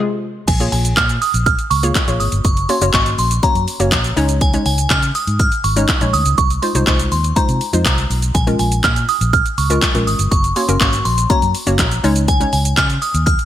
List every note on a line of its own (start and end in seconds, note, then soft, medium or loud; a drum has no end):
0.00 0.31 C3 medium
0.00 0.31 G#3 medium
0.00 0.31 F4 medium
0.00 0.31 G#4 loud
0.48 0.68 A#1 loud
0.48 0.71 G#5 loud
0.48 kick loud
0.48 closed hi-hat medium
0.48 crash loud
0.48 shaker medium
0.60 1.24 A#3 medium
0.60 1.24 F4 medium
0.60 1.24 G#4 medium
0.60 1.24 C#5 medium
0.60 closed hi-hat medium
0.60 shaker medium
0.72 0.92 A#1 loud
0.72 0.98 G#5 medium
0.72 open hi-hat medium
0.72 shaker medium
0.85 closed hi-hat medium
0.85 shaker medium
0.97 1.17 A#2 loud
0.97 1.22 F6 loud
0.97 kick loud
0.97 clap loud
0.97 closed hi-hat medium
0.97 shaker medium
1.09 closed hi-hat medium
1.09 shaker medium
1.22 1.47 D#6 loud
1.22 open hi-hat medium
1.22 shaker medium
1.34 1.54 A#1 medium
1.34 closed hi-hat medium
1.34 shaker medium
1.46 1.72 F6 loud
1.46 kick loud
1.46 closed hi-hat medium
1.46 shaker medium
1.59 closed hi-hat medium
1.59 shaker soft
1.70 1.90 C#2 medium
1.70 2.21 C#6 loud
1.70 open hi-hat medium
1.70 shaker medium
1.83 1.99 A#3 medium
1.83 1.99 F4 medium
1.83 1.99 G#4 medium
1.83 1.99 C#5 loud
1.83 closed hi-hat medium
1.83 shaker medium
1.95 kick loud
1.95 clap loud
1.95 closed hi-hat medium
1.95 shaker medium
2.08 2.18 A#1 medium
2.08 2.45 A#3 medium
2.08 2.45 F4 medium
2.08 2.45 G#4 medium
2.08 2.45 C#5 medium
2.08 closed hi-hat medium
2.08 shaker medium
2.20 2.30 G#1 medium
2.20 2.31 D#6 loud
2.20 open hi-hat medium
2.20 shaker medium
2.32 2.42 G1 medium
2.32 closed hi-hat medium
2.32 shaker medium
2.45 2.64 F#1 loud
2.45 2.70 C#6 loud
2.45 kick loud
2.45 closed hi-hat medium
2.45 shaker medium
2.57 closed hi-hat medium
2.57 shaker medium
2.69 2.77 A#3 medium
2.69 2.77 C#4 medium
2.69 2.77 F#4 medium
2.69 2.77 C#5 medium
2.69 2.95 C6 medium
2.69 open hi-hat medium
2.69 shaker medium
2.81 2.91 F#1 medium
2.81 2.89 A#3 medium
2.81 2.90 C#4 medium
2.81 2.90 F#4 medium
2.81 2.90 C#5 medium
2.81 closed hi-hat medium
2.81 shaker medium
2.94 3.14 G#1 loud
2.94 3.26 A#3 medium
2.94 3.26 C#4 medium
2.94 3.26 F#4 medium
2.94 3.26 D#5 medium
2.94 3.05 C#6 medium
2.94 kick loud
2.94 clap loud
2.94 closed hi-hat medium
2.94 shaker medium
3.06 closed hi-hat medium
3.06 shaker medium
3.18 3.38 A#1 loud
3.18 3.44 C6 medium
3.18 open hi-hat medium
3.18 shaker medium
3.31 closed hi-hat medium
3.31 shaker medium
3.43 3.67 A#3 medium
3.43 3.67 C#4 medium
3.43 3.67 F#4 medium
3.43 3.67 C#5 medium
3.43 4.13 A#5 medium
3.43 kick loud
3.43 closed hi-hat medium
3.43 shaker medium
3.55 3.65 F#2 loud
3.55 closed hi-hat soft
3.55 shaker medium
3.68 open hi-hat medium
3.68 shaker medium
3.80 3.90 F#1 medium
3.80 4.17 A#3 medium
3.80 4.15 C#4 medium
3.80 4.17 F#4 medium
3.80 4.16 C#5 medium
3.80 closed hi-hat medium
3.80 shaker medium
3.92 4.12 A#1 medium
3.92 kick loud
3.92 clap loud
3.92 closed hi-hat medium
3.92 shaker medium
4.04 closed hi-hat medium
4.04 shaker medium
4.16 4.56 C#2 loud
4.16 4.46 G#3 loud
4.16 4.46 C#4 medium
4.16 4.46 D#4 medium
4.16 4.46 C#5 loud
4.16 open hi-hat medium
4.16 shaker medium
4.29 closed hi-hat medium
4.29 shaker medium
4.41 4.64 G#5 loud
4.41 kick loud
4.41 closed hi-hat medium
4.41 shaker medium
4.53 5.17 G#3 medium
4.53 5.17 C#4 medium
4.53 5.18 D#4 medium
4.53 5.18 C#5 medium
4.53 closed hi-hat medium
4.53 shaker medium
4.66 4.86 C#2 loud
4.66 4.91 G#5 medium
4.66 open hi-hat medium
4.66 shaker medium
4.78 closed hi-hat medium
4.78 shaker medium
4.90 5.10 C#3 loud
4.90 5.13 F6 loud
4.90 kick loud
4.90 clap loud
4.90 closed hi-hat medium
4.90 shaker medium
5.03 closed hi-hat medium
5.03 shaker medium
5.15 5.40 D#6 loud
5.15 open hi-hat medium
5.15 shaker medium
5.27 5.47 G#2 medium
5.27 closed hi-hat medium
5.27 shaker medium
5.39 5.63 F6 loud
5.39 kick loud
5.39 closed hi-hat medium
5.39 shaker medium
5.52 closed hi-hat medium
5.52 shaker soft
5.64 5.84 G#1 medium
5.64 6.15 C#6 loud
5.64 open hi-hat medium
5.64 shaker medium
5.76 5.92 G#3 medium
5.76 5.92 C#4 medium
5.76 5.93 D#4 medium
5.76 5.93 C#5 loud
5.76 closed hi-hat medium
5.76 shaker medium
5.88 kick loud
5.88 clap loud
5.88 closed hi-hat medium
5.88 shaker medium
6.01 6.11 A#1 medium
6.01 6.38 G#3 medium
6.01 6.38 C#4 medium
6.01 6.38 D#4 medium
6.01 6.38 C#5 medium
6.01 closed hi-hat medium
6.01 shaker medium
6.13 6.23 D2 medium
6.13 6.39 D#6 loud
6.13 open hi-hat medium
6.13 shaker medium
6.26 6.36 C#2 medium
6.26 closed hi-hat medium
6.26 shaker medium
6.38 6.58 C2 loud
6.38 6.61 C#6 loud
6.38 kick loud
6.38 closed hi-hat medium
6.38 shaker medium
6.50 closed hi-hat medium
6.50 shaker medium
6.62 6.71 G#3 medium
6.62 6.71 D#4 medium
6.62 6.71 F4 medium
6.62 6.71 C5 medium
6.62 6.88 C6 medium
6.62 open hi-hat medium
6.62 shaker medium
6.75 6.85 C2 loud
6.75 6.83 G#3 medium
6.75 6.83 D#4 medium
6.75 6.83 F4 medium
6.75 6.83 C5 medium
6.75 closed hi-hat medium
6.75 shaker medium
6.87 7.07 C2 loud
6.87 7.19 G#3 medium
6.87 7.19 D#4 medium
6.87 7.19 F4 medium
6.87 7.19 C5 medium
6.87 7.12 C#6 loud
6.87 kick loud
6.87 clap loud
6.87 closed hi-hat medium
6.87 shaker medium
6.99 closed hi-hat medium
6.99 shaker medium
7.12 7.32 D#2 medium
7.12 7.37 C6 medium
7.12 open hi-hat medium
7.12 shaker medium
7.24 closed hi-hat medium
7.24 shaker medium
7.36 7.60 G#3 medium
7.36 7.60 D#4 medium
7.36 7.60 F4 medium
7.36 7.60 C5 medium
7.36 8.06 A#5 medium
7.36 kick loud
7.36 closed hi-hat medium
7.36 shaker medium
7.49 7.59 C3 medium
7.49 closed hi-hat medium
7.49 shaker medium
7.61 open hi-hat medium
7.61 shaker medium
7.73 7.83 F2 medium
7.73 8.21 G#3 medium
7.73 8.21 D#4 medium
7.73 8.21 F4 medium
7.73 8.21 C5 medium
7.73 closed hi-hat medium
7.73 shaker medium
7.85 8.05 C2 medium
7.85 kick loud
7.85 clap loud
7.85 closed hi-hat medium
7.85 shaker medium
7.98 closed hi-hat medium
7.98 shaker medium
8.10 8.30 B1 medium
8.10 open hi-hat medium
8.10 shaker medium
8.22 closed hi-hat medium
8.22 shaker medium
8.35 8.54 A#1 loud
8.35 8.58 G#5 loud
8.35 kick loud
8.35 closed hi-hat medium
8.35 shaker medium
8.47 9.11 G#3 medium
8.47 9.11 C#4 medium
8.47 9.11 F4 medium
8.47 9.11 A#4 medium
8.47 closed hi-hat medium
8.47 shaker medium
8.59 8.79 A#1 loud
8.59 8.85 G#5 medium
8.59 open hi-hat medium
8.59 shaker medium
8.72 closed hi-hat medium
8.72 shaker medium
8.84 9.04 A#2 loud
8.84 9.09 F6 loud
8.84 kick loud
8.84 clap loud
8.84 closed hi-hat medium
8.84 shaker medium
8.96 closed hi-hat medium
8.96 shaker medium
9.09 9.34 D#6 loud
9.09 open hi-hat medium
9.09 shaker medium
9.21 9.41 A#1 medium
9.21 closed hi-hat medium
9.21 shaker medium
9.33 9.59 F6 loud
9.33 kick loud
9.33 closed hi-hat medium
9.33 shaker medium
9.46 closed hi-hat soft
9.46 shaker medium
9.58 9.77 C#2 medium
9.58 10.04 C#6 loud
9.58 open hi-hat medium
9.58 shaker medium
9.70 9.86 G#3 medium
9.70 9.86 C#4 medium
9.70 9.86 F4 medium
9.70 9.86 A#4 loud
9.70 closed hi-hat medium
9.70 shaker medium
9.82 kick loud
9.82 clap loud
9.82 closed hi-hat medium
9.82 shaker medium
9.94 10.05 A#1 loud
9.94 10.31 G#3 medium
9.94 10.32 C#4 medium
9.94 10.32 F4 medium
9.94 10.32 A#4 medium
9.94 closed hi-hat medium
9.94 shaker medium
10.07 10.17 G#1 medium
10.07 10.32 D#6 loud
10.07 open hi-hat medium
10.07 shaker medium
10.19 10.29 G1 medium
10.19 closed hi-hat medium
10.19 shaker medium
10.31 10.51 F#1 loud
10.31 10.54 C#6 loud
10.31 kick loud
10.31 closed hi-hat medium
10.31 shaker medium
10.44 closed hi-hat medium
10.44 shaker medium
10.56 10.64 A#3 medium
10.56 10.64 C#4 medium
10.56 10.64 F#4 medium
10.56 10.64 C#5 medium
10.56 10.79 C6 medium
10.56 open hi-hat medium
10.56 shaker medium
10.68 10.78 F#1 medium
10.68 10.76 A#3 medium
10.68 10.76 C#4 medium
10.68 10.77 F#4 medium
10.68 10.77 A#4 medium
10.68 closed hi-hat medium
10.68 shaker medium
10.81 11.00 G#1 loud
10.81 11.13 A#3 medium
10.81 11.13 C#4 medium
10.81 11.13 F#4 medium
10.81 11.13 C#5 medium
10.81 11.04 C#6 loud
10.81 kick loud
10.81 clap loud
10.81 closed hi-hat medium
10.81 shaker medium
10.93 closed hi-hat medium
10.93 shaker medium
11.05 11.25 A#1 loud
11.05 11.31 C6 medium
11.05 open hi-hat medium
11.05 shaker medium
11.18 closed hi-hat medium
11.18 shaker medium
11.30 11.54 A#3 medium
11.30 11.54 C#4 medium
11.30 11.54 F#4 medium
11.30 11.54 C#5 medium
11.30 12.00 A#5 medium
11.30 kick loud
11.30 closed hi-hat medium
11.30 shaker medium
11.42 11.52 F#2 loud
11.42 closed hi-hat soft
11.42 shaker medium
11.55 open hi-hat medium
11.55 shaker medium
11.67 11.77 F#1 medium
11.67 12.04 A#3 medium
11.67 12.03 C#4 medium
11.67 12.04 F#4 medium
11.67 12.03 C#5 medium
11.67 closed hi-hat medium
11.67 shaker medium
11.79 11.99 A#1 loud
11.79 kick loud
11.79 clap loud
11.79 closed hi-hat medium
11.79 shaker medium
11.91 closed hi-hat medium
11.91 shaker medium
12.04 12.43 C#2 loud
12.04 12.33 G#3 loud
12.04 12.33 C#4 medium
12.04 12.33 D#4 medium
12.04 12.33 C#5 loud
12.04 open hi-hat medium
12.04 shaker medium
12.16 closed hi-hat medium
12.16 shaker medium
12.28 12.51 G#5 loud
12.28 kick loud
12.28 closed hi-hat medium
12.28 shaker medium
12.40 13.04 G#3 medium
12.40 13.04 C#4 medium
12.40 13.04 D#4 medium
12.40 13.04 C#5 medium
12.40 closed hi-hat medium
12.40 shaker medium
12.53 12.73 C#2 loud
12.53 12.78 G#5 medium
12.53 open hi-hat medium
12.53 shaker medium
12.65 closed hi-hat medium
12.65 shaker medium
12.77 12.97 C#3 loud
12.77 13.03 F6 loud
12.77 kick loud
12.77 clap loud
12.77 closed hi-hat medium
12.77 shaker medium
12.90 closed hi-hat medium
12.90 shaker medium
13.02 13.27 D#6 loud
13.02 open hi-hat medium
13.02 shaker medium
13.14 13.34 D#2 loud
13.14 closed hi-hat medium
13.14 shaker medium
13.26 13.45 F6 loud
13.26 kick loud
13.26 closed hi-hat medium
13.26 shaker medium
13.39 closed hi-hat soft
13.39 shaker medium